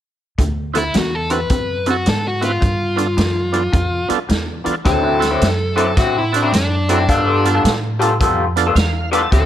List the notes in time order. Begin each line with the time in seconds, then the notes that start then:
0.38 D2 D3 A3, kick, closed hi-hat
0.74 D3 A3 C4 E4 F#4 A4, closed hi-hat
0.94 E2 D3 B3 F#4, snare, closed hi-hat
1.15 A4
1.30 D3 B3 C4 E4 F#4 A4 B4, closed hi-hat
1.50 F#2 D3 C4, kick, closed hi-hat
1.86 D3 C4 E4 F#4 A4, closed hi-hat
1.90 F#4
2.06 G#2 D3 B3 A4, snare, closed hi-hat
2.28 F#4
2.41 D3 B3 C4 E4 F4 F#4 B4, closed hi-hat
2.61 G2 D3, kick, closed hi-hat
2.96 G2 D3 B3 D4 F4 A4, closed hi-hat
3.17 F#2 G2 E3, snare, closed hi-hat
3.52 G2 E3 B3 D4 F4 A4, closed hi-hat
3.73 F2 G2 F3, kick, closed hi-hat
4.08 G2 F3 B3 D4 F4 A4, muted upright bass stroke, closed hi-hat
4.29 E2 G2 E3, snare, closed hi-hat
4.64 G2 E3 B3 D4 F4 A4, muted upright bass stroke, closed hi-hat
4.85 D2 D3 F#3 C4 E4 A4, kick, snare, closed hi-hat
5.03 D3 F#3 C4 E4
5.19 C4 E4 F#4 A4, closed hi-hat
5.24 snare
5.31 D3 F#3 C4 E4
5.41 F#2, snare, closed hi-hat
5.76 D3 F#3 C4 E4 F#4 A4, closed hi-hat
5.96 A2 D3 F#3 C4 E4 F#4, kick, snare, closed hi-hat
6.18 E4
6.32 C4 D4 E4 F#4 A4, closed hi-hat
6.42 D3 F#3 C4 E4
6.52 F#2 D4, muted clean electric guitar stroke, snare, closed hi-hat
6.89 D3 F#3 C4 E4 F#4 A4, closed hi-hat
7.09 G2 G3 B3 F4 A4, kick, closed hi-hat
7.26 G3 B3 F4 A4
7.45 B3 D4 F4 A4, closed hi-hat
7.55 G3 B3 F4 A4
7.64 A2, snare, closed hi-hat
7.99 G3 B3 D4 F4 A4, closed hi-hat
8.20 F2 G3 B3 F4 A4, kick, closed hi-hat
8.56 B3 D4 F4 A4, closed hi-hat
8.67 G3 B3 F4 A4
8.75 E2 F5, muted clean electric guitar stroke, snare, closed hi-hat
9.12 G3 B3 D4 F4 A4 B4 A5, closed hi-hat
9.31 D2 D3 F#3 C4 E4 A4, kick, closed hi-hat